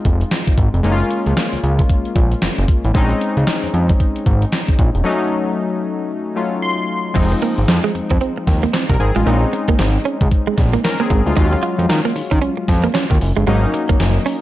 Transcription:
Already playing: synth keys G#3 C4 D#4 F4
0.05 analog synth bass F1, kick, closed hi-hat
0.21 closed hi-hat
0.31 snare, clap, closed hi-hat
0.47 kick, closed hi-hat
0.58 analog synth bass G#1, kick, closed hi-hat
0.74 analog synth bass F1, closed hi-hat
0.83 analog synth bass F#1, synth keys G#3 A#3 C#4 D#4, closed hi-hat
0.92 synth keys F4
1.00 closed hi-hat
1.11 closed hi-hat
1.26 analog synth bass C#2, closed hi-hat
1.37 snare, clap, closed hi-hat
1.53 analog synth bass C#2, closed hi-hat
1.63 analog synth bass C#2, closed hi-hat
1.79 kick, closed hi-hat
1.89 kick, closed hi-hat
2.05 closed hi-hat
2.16 analog synth bass A#1, kick, closed hi-hat
2.32 closed hi-hat
2.42 analog synth bass F#1, snare, clap, closed hi-hat
2.58 analog synth bass F#1, closed hi-hat
2.68 kick, closed hi-hat
2.84 analog synth bass A1, closed hi-hat
2.94 analog synth bass A#1, synth keys G#3 C4 C#4 D#4, kick, closed hi-hat
3.11 closed hi-hat
3.21 closed hi-hat
3.37 analog synth bass C#2, closed hi-hat
3.47 snare, clap, closed hi-hat
3.63 analog synth bass F2, closed hi-hat
3.74 analog synth bass F2, closed hi-hat
3.89 kick, closed hi-hat
4.00 kick, closed hi-hat
4.16 closed hi-hat
4.26 analog synth bass G#1, kick, closed hi-hat
4.42 closed hi-hat
4.52 snare, clap, closed hi-hat
4.69 kick, closed hi-hat
4.79 analog synth bass A#1, kick, closed hi-hat
4.95 analog synth bass E1, closed hi-hat
5.04 synth keys F#3 A3 C#4 D#4
6.36 synth keys F#3 A3 C#4 F4
6.62 synth keys C6
7.14 analog synth bass F1, synth keys F3 G#3 C4 D#4, clean electric guitar F3, kick, closed hi-hat, crash
7.32 muted clean electric guitar stroke
7.42 clean electric guitar A#3, closed hi-hat
7.58 analog synth bass G#1, closed hi-hat
7.68 analog synth bass F2, snare, clap, closed hi-hat
7.84 clean electric guitar G#3
7.95 analog synth bass F2, muted clean electric guitar stroke, closed hi-hat
8.10 analog synth bass F2, clean electric guitar C4, kick, closed hi-hat
8.21 clean electric guitar C4, closed hi-hat
8.38 muted clean electric guitar stroke
8.47 analog synth bass D#2, kick, snare, closed hi-hat
8.63 clean electric guitar A#3, closed hi-hat
8.73 clean electric guitar C4, snare, clap, closed hi-hat
8.89 analog synth bass C2, synth keys A#4, muted clean electric guitar stroke, kick
9.00 analog synth bass G#1, synth keys C4 G#4, closed hi-hat
9.16 analog synth bass A1, clean electric guitar G#3, synth keys G#3 F4, closed hi-hat
9.25 analog synth bass A#1, synth keys G#3 C4 C#4 D#4, clean electric guitar A#3, closed hi-hat
9.53 muted clean electric guitar stroke, closed hi-hat
9.68 analog synth bass G#1, clean electric guitar A#3, kick, closed hi-hat
9.79 analog synth bass G#1, snare, clap, closed hi-hat
10.05 clean electric guitar C#4, closed hi-hat
10.21 analog synth bass C#2, kick, closed hi-hat
10.31 kick, closed hi-hat
10.47 clean electric guitar G#3
10.58 analog synth bass A#1, muted clean electric guitar stroke, kick, snare, closed hi-hat
10.73 clean electric guitar A#3, closed hi-hat
10.84 synth keys C#4 A#4, muted clean electric guitar stroke, snare, clap, closed hi-hat
11.00 clean electric guitar A#3, synth keys C4 G#4
11.10 analog synth bass G#1, clean electric guitar G#3, kick, closed hi-hat
11.26 analog synth bass D2, synth keys G#3 F4, closed hi-hat
11.36 analog synth bass D#2, synth keys F#3 G#3 C#4 F4, clean electric guitar D#4, kick, closed hi-hat
11.53 muted clean electric guitar stroke
11.63 clean electric guitar F4, closed hi-hat
11.78 analog synth bass F2, closed hi-hat
11.89 analog synth bass D#3, snare, clap, closed hi-hat
12.05 clean electric guitar A#3
12.16 analog synth bass D#3, muted clean electric guitar stroke, open hi-hat
12.31 analog synth bass D#3, clean electric guitar C#4, kick, closed hi-hat
12.42 clean electric guitar C#4, closed hi-hat
12.57 muted clean electric guitar stroke
12.68 analog synth bass F2, kick, snare, closed hi-hat
12.84 clean electric guitar A#3, closed hi-hat
12.94 clean electric guitar C#4, snare, clap, closed hi-hat
13.10 analog synth bass D#2, muted clean electric guitar stroke, kick
13.21 analog synth bass F#1, open hi-hat
13.37 analog synth bass G1, clean electric guitar G#3, closed hi-hat
13.47 analog synth bass G#1, synth keys F#3 A#3 C#4 D#4, clean electric guitar G#3, closed hi-hat
13.74 muted clean electric guitar stroke, closed hi-hat
13.89 analog synth bass F#1, clean electric guitar A#3, kick, closed hi-hat
14.00 analog synth bass F#1, snare, clap, closed hi-hat
14.26 clean electric guitar C#4, open hi-hat

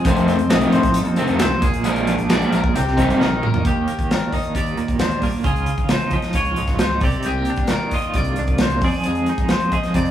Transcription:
Already playing: clean electric guitar F3 G#3
0.05 fingered electric bass F2, clean electric guitar F2 C5, overdriven electric guitar C3 D#3 A3 C4, kick, closed hi-hat
0.17 closed hi-hat
0.28 clean electric guitar C4, snare, closed hi-hat
0.39 fingered electric bass F2, closed hi-hat
0.50 fingered electric bass C2, overdriven electric guitar C3 D#3 A3 C4, clean electric guitar F3 C4 D#5, snare, closed hi-hat
0.61 clean electric guitar D#4, closed hi-hat
0.72 fingered electric bass A2, clean electric guitar C4 C5, closed hi-hat
0.83 kick, snare, closed hi-hat
0.94 clean electric guitar A4, closed hi-hat
1.05 fingered electric bass D#2, closed hi-hat
1.16 overdriven electric guitar C3 D#3 A3 C4, clean electric guitar C3 C4, closed hi-hat
1.27 fingered electric bass F2, clean electric guitar D#4, closed hi-hat
1.39 fingered electric bass C2, clean electric guitar C4 C5, snare, closed hi-hat
1.61 fingered electric bass A#1, clean electric guitar A#2 G#4, kick, closed hi-hat
1.74 closed hi-hat
1.84 overdriven electric guitar A#2 F3 G#3 D4, clean electric guitar G#3 A#4, closed hi-hat
1.96 closed hi-hat
2.07 clean electric guitar F3 D4, closed hi-hat
2.19 fingered electric bass A#1, closed hi-hat
2.29 fingered electric bass A#1, overdriven electric guitar A#2 F3 G#3 D4, clean electric guitar G#3 D5, snare, closed hi-hat
2.42 closed hi-hat
2.53 fingered electric bass A#1, clean electric guitar A#4, closed hi-hat
2.64 kick
2.74 fingered electric bass C2, clean electric guitar C3 G4, closed hi-hat
2.86 fingered electric bass C2, snare
2.97 overdriven electric guitar C3 G3 C4 D#4, clean electric guitar A#3, kick, snare, closed hi-hat
3.08 fingered electric bass G2, closed hi-hat
3.18 fingered electric bass A#1, clean electric guitar D#3 D#4 A#4, snare
3.42 clean electric guitar A#3 A#4, mid tom
3.54 floor tom
3.65 fingered electric bass D#2, clean electric guitar D#2 G4, kick, closed hi-hat
3.88 clean electric guitar A#3, closed hi-hat
3.99 kick, closed hi-hat
4.11 clean electric guitar D4 A#4, snare, closed hi-hat
4.32 clean electric guitar D#3 D#5, kick, open hi-hat
4.44 closed hi-hat
4.55 fingered electric bass D#2, clean electric guitar G4 D5, kick, closed hi-hat
4.66 closed hi-hat
4.77 fingered electric bass D#2, clean electric guitar A#2, closed hi-hat
4.88 kick, closed hi-hat
4.99 fingered electric bass D#2, clean electric guitar D4 C5, snare, closed hi-hat
5.11 closed hi-hat
5.22 fingered electric bass G2, clean electric guitar A#3 D5, kick, open hi-hat
5.44 fingered electric bass C#2, clean electric guitar C#3 F4 G#4, kick, closed hi-hat
5.56 closed hi-hat
5.66 closed hi-hat
5.77 kick, closed hi-hat
5.89 clean electric guitar D#4 C5, snare, closed hi-hat
6.00 closed hi-hat
6.11 clean electric guitar F3 D#5, kick, closed hi-hat
6.22 snare, closed hi-hat
6.33 fingered electric bass C#2, clean electric guitar F4 C#5, kick, closed hi-hat
6.45 closed hi-hat
6.56 fingered electric bass C#2, clean electric guitar G#2, closed hi-hat
6.67 kick, snare, closed hi-hat
6.79 fingered electric bass C#2, clean electric guitar D#4 C5, snare, closed hi-hat
7.01 fingered electric bass C2, clean electric guitar C3 G4 D5, kick, open hi-hat
7.12 closed hi-hat
7.23 fingered electric bass C2, clean electric guitar G#3 G4, closed hi-hat
7.38 clean electric guitar A#3
7.45 closed hi-hat
7.50 clean electric guitar D4
7.56 kick, closed hi-hat
7.67 clean electric guitar D#3 A#4, snare, closed hi-hat
7.91 clean electric guitar F4 D#5, kick, open hi-hat
8.02 closed hi-hat
8.14 fingered electric bass C2, clean electric guitar G2 D5, kick, closed hi-hat
8.24 closed hi-hat
8.36 fingered electric bass C2, clean electric guitar D4, closed hi-hat
8.47 kick, closed hi-hat
8.58 fingered electric bass C2, clean electric guitar A#3 C5, snare, closed hi-hat
8.70 closed hi-hat
8.81 fingered electric bass F2, clean electric guitar F2 G#4 D5, kick, open hi-hat
9.04 fingered electric bass F2, clean electric guitar G#4, closed hi-hat
9.09 clean electric guitar G#3
9.15 closed hi-hat
9.26 clean electric guitar D#4, closed hi-hat
9.38 kick, closed hi-hat
9.49 clean electric guitar F3 C5, snare, closed hi-hat
9.60 closed hi-hat
9.72 clean electric guitar G#4 D#5, kick, closed hi-hat
9.83 snare, closed hi-hat
9.94 fingered electric bass F2, clean electric guitar C3 D5, kick, closed hi-hat
10.05 closed hi-hat

